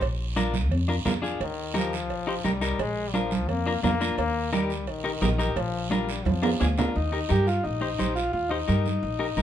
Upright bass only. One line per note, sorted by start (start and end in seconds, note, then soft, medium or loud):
0.01 0.70 A#1 medium
0.70 0.99 F2 medium
1.06 1.34 F2 medium
1.40 2.10 D#2 medium
2.10 2.38 A#1 medium
2.45 2.73 C2 medium
2.79 3.48 A#1 medium
3.48 3.76 F2 medium
3.84 4.11 F2 medium
4.18 4.87 D#2 medium
4.87 5.15 A#1 medium
5.21 5.49 A#1 medium
5.56 6.27 A#1 loud
6.25 6.53 F2 medium
6.61 6.88 D2 loud
6.96 7.23 D#2 medium
7.31 7.58 G2 medium
7.65 7.93 A#1 medium
8.00 8.27 A#1 medium
8.33 8.61 D#2 medium
8.69 8.96 G2 medium
9.03 9.31 A#1 medium
9.37 9.42 A#1 medium